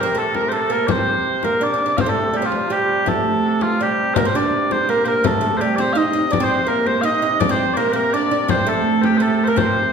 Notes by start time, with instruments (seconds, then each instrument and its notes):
Already playing: hurdy-gurdy C3
0.00 oud C4, shawm A#4, bagpipes A#4
0.15 oud A3, shawm A4, bagpipes A4
0.35 bagpipes A#4, shawm A#4, frame drum
0.49 oud A3, bagpipes A4 C5
0.55 shawm A4
0.70 oud A#3, bagpipes A#4
0.87 oud C4, bagpipes C5 D5, frame drum
0.91 shawm C5
1.07 frame drum
1.25 frame drum
1.43 oud A#3, bagpipes A#4, frame drum
1.61 oud D4, bagpipes D5
1.74 oud D4
1.86 oud D4
1.97 hurdy-gurdy C3, oud C4, bagpipes C5 F5, frame drum
2.06 oud A3, bagpipes A4
2.34 oud G3, bagpipes G4
2.42 oud F3, bagpipes F4
2.52 frame drum
2.70 oud G3, bagpipes G4
3.06 oud A3, bagpipes A4, frame drum
3.61 bagpipes F4, frame drum
3.81 oud G3, bagpipes G4
4.14 oud A#3, bagpipes A#4 C5, frame drum
4.25 oud C4, bagpipes C5
4.35 oud D4, bagpipes D5
4.71 bagpipes C5, frame drum
4.89 oud A#3, bagpipes A#4
5.05 oud A#3, bagpipes A#4 C5
5.24 oud A3, bagpipes A4, frame drum
5.41 oud A3
5.57 bagpipes G4 C5
5.61 oud G3
5.76 oud C4, bagpipes D5, frame drum
5.80 bagpipes C5
5.93 oud D#4, bagpipes F5, frame drum
5.97 bagpipes D#5
6.13 oud D#4, frame drum
6.30 hurdy-gurdy C3, oud D4, shawm D5, bagpipes D5, frame drum
6.40 oud C4, shawm C5, bagpipes C5
6.67 oud A#3, bagpipes A#4, shawm A#4
6.87 shawm C5, bagpipes C5, frame drum
7.01 oud D#4, shawm D#5, bagpipes D#5 F5
7.22 oud D#4
7.40 oud D4, shawm D5, bagpipes D5, frame drum
7.49 oud C4, bagpipes C5, shawm C5
7.73 oud A#3, bagpipes A#4 D5
7.79 shawm A#4
7.92 oud A#3, shawm A#4, bagpipes A#4 C5
8.13 oud D4, bagpipes D5, shawm D5
8.31 oud D4
8.48 oud C4, bagpipes C5, shawm C5, frame drum
8.67 oud A3, shawm A4, bagpipes A4
9.01 shawm G4, bagpipes G4 C5, frame drum
9.17 oud A3, bagpipes C5
9.22 bagpipes A4, shawm A4
9.44 oud A#3, shawm A#4, bagpipes C5
9.48 bagpipes A#4
9.56 oud C4, bagpipes C5, shawm C5, frame drum
9.66 shawm A#4
9.71 shawm C5